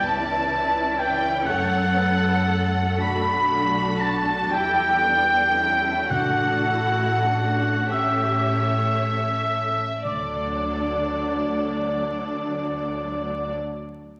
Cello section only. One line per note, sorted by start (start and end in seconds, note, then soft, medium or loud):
0.05 1.44 E4 medium
1.47 3.02 A4 medium
3.02 4.49 F#4 medium
4.52 5.04 G4 medium
5.03 5.56 D4 medium
5.56 6.10 E4 medium
6.10 7.87 F#4 medium
7.91 8.95 G4 soft
10.05 13.51 D2 soft